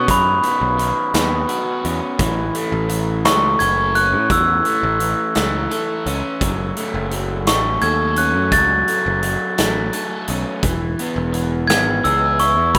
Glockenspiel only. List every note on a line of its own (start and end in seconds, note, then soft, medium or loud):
0.11 1.81 B5 medium
3.25 3.61 C#6 loud
3.59 3.96 G#6 loud
3.95 4.31 F#6 loud
4.32 6.03 E6 medium
7.47 7.83 C#6 medium
7.82 8.18 G#6 medium
8.18 8.50 F#6 medium
8.52 10.24 A6 loud
11.67 12.01 G#6 loud
12.04 12.20 E6 medium
12.40 12.76 C#6 medium
12.75 12.79 B5 medium